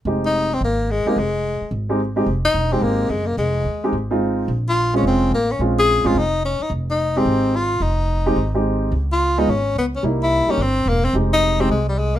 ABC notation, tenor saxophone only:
X:1
M:4/4
L:1/8
Q:"Swing" 1/4=216
K:Fm
V:1 name="Tenor saxophone"
z E2 C B,2 A, B, | A,4 z4 | z E2 C B,2 A, B, | A,4 z4 |
z F2 D C2 B, D | z A2 F E2 D E | z E2 C3 F2 | E6 z2 |
z F2 E D2 _C D | z =E2 D C2 B, C | z E2 C A, G, A, B, |]